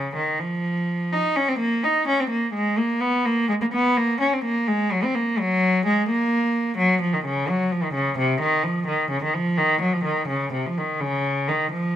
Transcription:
Already playing: C#3
0.16 D#3
0.39 F3
1.12 D#4
1.36 C#4
1.48 C4
1.59 A#3
1.83 D#4
2.07 C#4
2.20 C4
2.30 A#3
2.54 G#3
2.78 A#3
3.01 B3
3.26 A#3
3.49 G#3
3.61 A#3
3.73 B3
3.97 A#3
4.20 C#4
4.33 C4
4.44 A#3
4.67 G#3
4.92 F#3
5.04 C4
5.15 A#3
5.39 F#3
5.86 G#3
6.09 A#3
6.78 F#3
7.01 F3
7.13 D#3
7.25 C#3
7.48 F#3
7.72 F3
7.83 D#3
7.94 C#3
8.18 C3
8.41 D#3
8.64 F3
8.87 D#3
9.10 C#3
9.23 D#3
9.34 F3
9.58 D#3
9.81 F#3
9.93 F3
10.04 D#3
10.28 C#3
10.52 C3
10.66 F3
10.78 D#3
11.00 C#3
11.48 D#3
11.72 F3

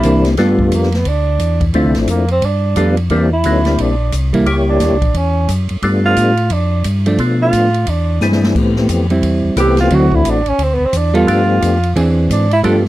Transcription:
Already playing: G3 A#3 C4 D4 E4
0.03 C2 E3 A#3 D4, kick, hi-hat pedal, ride
0.25 snare, ride
0.37 G2 G3 A3 B3 D4 F4 A4, kick, snare, ride
0.59 kick
0.72 F2 A#3, kick, hi-hat pedal, ride
0.83 snare
0.92 B3, snare, ride
1.05 D2 D4, kick, ride
1.39 E2, kick, hi-hat pedal, ride
1.61 kick, ride
1.74 D2 D3 F3 A3 C4 D4 E4 F4, kick, ride
1.85 C2
1.95 A1, snare, ride
2.07 F2 A#3, kick, hi-hat pedal, ride
2.28 C4, ride
2.42 G2 D4, kick, ride
2.76 F2 G3 A3 B3 D4 F4 A4, kick, hi-hat pedal, ride
2.97 ride
3.10 E2 E3 G3 A#3 C4 D4 E4, kick, ride
3.33 E4
3.44 D2 F#3 A3 B3 C#4 D#4, kick, hi-hat pedal, ride
3.65 G3 A#3 C4 D4 E4, snare, ride
3.78 A#1 D4, kick, ride
4.12 C2, kick, hi-hat pedal, ride
4.33 G3 A#3 E4, kick, ride
4.46 C#2 G3 A#3 E4 G4 C#5, kick, ride
4.70 D4
4.80 D#2, kick, snare, hi-hat pedal, ride
4.92 C#2
5.02 A#1, kick, ride
5.14 E2 C#4, kick, ride
5.48 F#2, kick, hi-hat pedal, ride
5.69 F#2, ride
5.82 G2 G3 A3 B3 D4 F4, kick, ride
6.05 F4
6.16 A2, kick, hi-hat pedal, ride
6.37 ride
6.50 F2 D4, kick, ride
6.84 G2, kick, hi-hat pedal, ride
7.06 F3 A3 D4, ride
7.18 B2 F3 A3 B3 D4 F4, kick, ride
7.42 F4
7.53 A2, kick, hi-hat pedal, ride
7.74 ride
7.87 E2 D4, kick, ride
8.21 G2 E3 C4 D4 E4 G#4, snare, hi-hat pedal
8.32 snare
8.44 snare
8.55 A2 E3 A3 B3 C4 G4, kick, crash
8.76 snare
8.89 F2, kick, hi-hat pedal, ride
9.10 G3 C4 E4, ride
9.22 E2, kick, ride
9.44 E2
9.56 C2 E3 A3 B3 C4 G4, kick, hi-hat pedal, ride
9.77 F4, snare, ride
9.90 D2 D3 E3 F#3 A3 C4 D4 E4 F#4, kick, ride
9.94 F#4
10.12 E4, kick
10.25 A1, kick, hi-hat pedal, ride
10.29 D4
10.46 A1 C#4, ride
10.59 D2, kick, ride
10.63 C4
10.74 B3
10.80 D2
10.85 C4
10.93 E2, kick, hi-hat pedal, ride
10.97 D4
11.14 G3 B3 F4 A4, ride
11.27 G2 F3 A3 B3 D4 G4, kick, ride
11.61 F2, kick, hi-hat pedal, ride
11.83 ride
11.96 E2 E3 C4 D4 G#4, kick, ride
12.30 G#2 D4, kick, hi-hat pedal, ride
12.51 E4, ride
12.63 G2 F3 G3 A3 B3 D4 F4 G4 A4, kick, ride

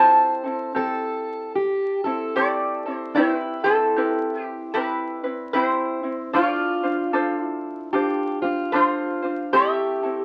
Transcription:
Already playing: C4 E4 G4 A4 C5 A5
0.44 C4 E4 A4
0.75 C4 E4 G4 A4
1.55 G4
2.04 C4 E4 A4
2.36 C4 E4 G4 A4 D5
2.86 C4 E4 A4
2.97 C5
3.15 C4 E4 G4 B4
3.19 B4
3.64 C4 E4 A4 B4
3.96 C4 E4 G4 B4
4.42 G4
4.74 C4 E4 G4 B4
5.23 C4 D4 E4 B4
5.53 C4 E4 G4 C5
6.03 C4 E4
6.33 D4 F4 A4 C5 D5
6.83 D4 F4 C5
7.13 D4 F4 A4 C5
7.40 E4
7.93 D4 F4 G4 A4 C5
8.42 D4 F4 C5
8.72 D4 F4 A4 C5
9.22 D4 F4 C5
9.53 C4 E4 G4 A4 E5
10.03 C4 E4 A4

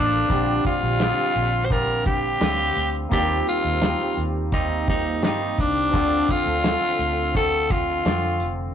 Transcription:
Already playing: A1 D3 F3 A#3 D4 F4 A4 D5
0.12 closed hi-hat
0.27 A#1 A#2 D3 G3 C4 D4 F4, kick, closed hi-hat
0.32 G4
0.65 F4, kick, closed hi-hat
0.83 A#1
0.99 D3 G3 C4 F4, snare, closed hi-hat
1.35 A#1, closed hi-hat
1.65 C5
1.70 D3 G3 C4 F4 A#4, kick, closed hi-hat
2.05 G4, kick, closed hi-hat
2.40 D2 D3 G3 C4 F4, snare, closed hi-hat
2.76 D2, closed hi-hat
3.09 D#2 D#3 G3 A#3 C4 F4 G4, kick, closed hi-hat
3.14 G4
3.47 F4, closed hi-hat
3.65 D#2
3.81 D#3 G3 C4 F4, snare, closed hi-hat
4.00 snare
4.17 D#2, closed hi-hat
4.52 D#3 G3 C4 D#4 F4, kick, closed hi-hat
4.87 A#3 C4 D#4 F4 G4, kick, closed hi-hat
5.22 G2 D#3 G3 C4 D#4 F4, snare, closed hi-hat
5.58 C2 D4, kick, closed hi-hat
5.90 D2 D3 A3 C4 D4 F4, kick, closed hi-hat
5.94 C4 F4 A4
6.29 F4, kick, closed hi-hat
6.46 D2
6.64 D3 A3 C4 F4, snare, closed hi-hat
6.99 D2, closed hi-hat
7.34 D3 A3 C4 F4 A4, kick, closed hi-hat
7.70 F4, kick, closed hi-hat
8.05 F2 D3 A3 C4 F4, snare, closed hi-hat
8.40 F1, closed hi-hat

